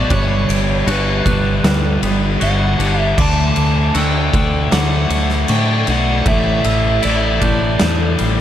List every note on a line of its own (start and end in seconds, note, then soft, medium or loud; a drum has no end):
0.00 0.11 F#3 medium
0.00 0.10 A3 medium
0.00 1.25 D4 medium
0.00 6.24 D4 medium
0.00 0.12 F#4 medium
0.00 6.24 A4 medium
0.00 0.13 D5 loud
0.00 0.10 C#6 medium
0.09 0.44 G1 medium
0.09 0.86 G2 loud
0.09 0.87 D3 loud
0.09 1.62 G3 medium
0.09 0.88 G3 loud
0.09 3.16 G3 medium
0.09 3.16 B4 medium
0.09 0.91 C#5 medium
0.09 kick loud
0.09 ride loud
0.49 0.82 G1 medium
0.49 1.26 D7 medium
0.49 ride medium
0.87 1.20 G1 loud
0.87 1.25 G2 medium
0.87 1.26 D3 medium
0.87 1.27 G3 medium
0.87 2.39 F#4 medium
0.87 ride loud
0.91 2.48 B4 medium
1.25 1.59 G1 medium
1.25 1.63 G2 medium
1.25 1.64 D3 medium
1.25 1.65 G3 medium
1.25 2.78 D4 medium
1.25 2.03 F#6 medium
1.25 kick loud
1.25 ride medium
1.64 1.97 D2 medium
1.64 2.40 G2 loud
1.64 2.41 D3 loud
1.64 3.18 G3 medium
1.64 2.41 G3 loud
1.64 snare loud
1.64 ride loud
2.02 2.36 G1 medium
2.02 3.19 B3 medium
2.02 ride medium
2.40 2.75 G1 medium
2.40 2.78 G2 medium
2.40 2.78 D3 medium
2.40 2.79 G3 medium
2.40 3.18 F#4 medium
2.40 3.01 F#5 loud
2.40 3.19 G7 medium
2.40 ride loud
2.78 3.13 G1 medium
2.78 3.16 G2 medium
2.78 3.16 D3 medium
2.78 3.17 G3 medium
2.78 6.28 D4 medium
2.78 ride medium
3.01 3.21 E5 loud
3.17 3.52 D2 medium
3.17 5.11 D3 medium
3.17 3.94 D3 loud
3.17 6.24 A3 medium
3.17 3.96 A3 medium
3.17 3.96 D4 loud
3.17 6.24 D5 medium
3.17 3.96 D6 medium
3.17 kick loud
3.17 crash loud
3.22 3.98 A5 loud
3.56 3.90 D2 medium
3.56 ride medium
3.94 4.29 D2 loud
3.94 4.33 D3 medium
3.94 4.34 A3 medium
3.94 4.35 D4 medium
3.94 5.88 F#4 medium
3.94 4.73 G5 loud
3.94 4.73 E6 medium
3.94 ride loud
4.33 4.67 D2 loud
4.33 4.72 D3 medium
4.33 4.73 A3 medium
4.33 4.73 D4 medium
4.33 kick medium
4.33 ride medium
4.71 5.06 D2 loud
4.71 5.48 D3 loud
4.71 6.26 F#3 medium
4.71 5.49 A3 loud
4.71 5.50 D4 loud
4.71 5.51 F#5 medium
4.71 5.49 D6 loud
4.71 snare loud
4.71 ride loud
5.09 5.44 D2 loud
5.09 8.18 A3 medium
5.09 ride medium
5.29 snare soft
5.48 5.83 A2 loud
5.48 5.87 D3 medium
5.48 5.88 A3 medium
5.48 5.89 D4 medium
5.48 5.90 G5 loud
5.48 6.27 C#6 medium
5.48 ride loud
5.87 6.21 B1 medium
5.87 6.25 D3 medium
5.87 6.29 A3 medium
5.87 6.29 D4 loud
5.87 6.28 F#5 loud
5.87 ride medium
6.25 6.60 A1 loud
6.25 8.19 A2 medium
6.25 7.04 A2 medium
6.25 7.04 E3 medium
6.25 8.41 A3 medium
6.25 8.41 E4 medium
6.25 8.41 G4 medium
6.25 8.41 D5 medium
6.25 7.01 E5 medium
6.25 kick loud
6.25 ride loud
6.30 7.06 A3 loud
6.64 6.98 A1 medium
6.64 7.43 E6 medium
6.64 ride medium
7.02 7.38 A1 loud
7.02 7.42 A2 medium
7.02 7.42 E3 medium
7.02 8.41 E4 medium
7.02 8.41 D5 medium
7.02 ride loud
7.06 7.44 A3 loud
7.40 7.76 A1 loud
7.40 7.81 A2 medium
7.40 7.81 E3 medium
7.40 7.82 A3 medium
7.40 8.41 D4 medium
7.40 8.19 G6 medium
7.40 kick medium
7.40 ride medium
7.80 8.14 E2 loud
7.80 8.41 A2 loud
7.80 8.41 D3 medium
7.80 8.41 E3 loud
7.80 8.41 A3 loud
7.80 snare loud
7.80 ride loud
8.19 8.41 A1 loud
8.19 8.41 G3 medium
8.19 ride medium